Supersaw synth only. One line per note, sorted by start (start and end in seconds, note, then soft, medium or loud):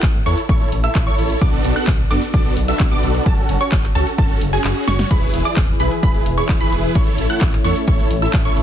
0.26 0.39 E4 medium
0.26 0.39 A4 medium
0.26 0.39 C#5 medium
0.49 0.70 E4 medium
0.49 0.70 A4 medium
0.49 0.70 C#5 medium
0.84 1.04 E4 medium
0.84 1.04 A4 medium
0.84 1.04 E5 loud
1.07 1.39 E4 medium
1.07 1.39 A4 medium
1.07 1.39 C#5 loud
1.41 1.73 B3 medium
1.41 1.73 D4 medium
1.41 1.73 F#4 medium
1.41 1.73 A4 medium
1.41 1.73 D5 medium
1.76 1.89 B3 loud
1.76 1.89 D4 medium
1.76 1.89 F#4 medium
1.76 1.89 A4 medium
1.76 1.89 F#5 loud
2.11 2.24 B3 medium
2.11 2.24 D4 medium
2.11 2.24 F#4 medium
2.11 2.24 A4 medium
2.11 2.23 D5 medium
2.34 2.54 B3 medium
2.34 2.54 D4 medium
2.34 2.54 F#4 medium
2.34 2.54 A4 medium
2.34 2.54 D5 medium
2.68 2.89 B3 medium
2.68 2.89 D4 medium
2.68 2.89 F#4 medium
2.68 2.89 A4 medium
2.68 2.89 E5 loud
2.91 3.23 B3 medium
2.91 3.23 D4 medium
2.91 3.23 F#4 medium
2.91 3.23 A4 medium
2.91 3.23 D5 loud
3.61 3.74 C#4 loud
3.61 3.74 F#4 medium
3.61 3.74 C#5 loud
3.95 4.08 C#4 medium
3.95 4.08 F#4 medium
3.95 4.08 A4 medium
4.18 4.39 C#4 medium
4.18 4.39 F#4 medium
4.18 4.39 A4 medium
4.53 4.85 C#4 medium
4.53 4.85 F#4 medium
4.53 4.85 G#4 medium
4.88 5.08 C#4 loud
4.88 5.08 F#4 medium
4.88 5.08 C#5 loud
5.11 5.43 E4 medium
5.11 5.43 G#4 medium
5.11 5.43 B4 medium
5.45 5.58 E4 medium
5.45 5.58 G#4 medium
5.45 5.58 D5 loud
5.80 5.93 E4 medium
5.80 5.93 G#4 medium
5.80 5.93 B4 medium
6.03 6.24 E4 medium
6.03 6.24 G#4 medium
6.03 6.24 B4 medium
6.38 6.58 E4 medium
6.38 6.58 G#4 medium
6.38 6.58 C#5 medium
6.61 6.93 E4 medium
6.61 6.93 G#4 medium
6.61 6.93 B4 loud
6.95 7.27 E4 medium
6.95 7.27 C#5 medium
7.30 7.43 E4 medium
7.30 7.43 A4 medium
7.30 7.43 F#5 loud
7.65 7.77 E4 medium
7.65 7.77 A4 medium
7.65 7.77 C#5 medium
7.88 8.08 E4 medium
7.88 8.08 A4 medium
7.88 8.08 C#5 medium
8.22 8.42 E4 medium
8.22 8.42 A4 medium
8.22 8.42 E5 loud
8.45 8.63 E4 medium
8.45 8.63 A4 medium
8.45 8.63 C#5 loud